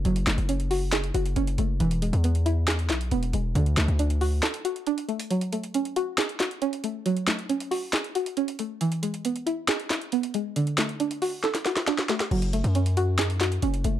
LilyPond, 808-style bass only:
\new Staff \with { instrumentName = "808-style bass" } { \clef bass \time 4/4 \key fis \minor \tempo 4 = 137 fis,,8 fis,,16 fis,,4.~ fis,,16 fis,,8 fis,,8 fis,,8 | e,,8. e,4.~ e,16 b,,8 e,,8 e,,8 | d,8 d,16 d,4~ d,16 r2 | r1 |
r1 | r1 | r1 | fis,,8. fis,2~ fis,16 fis,,8 fis,,8 | }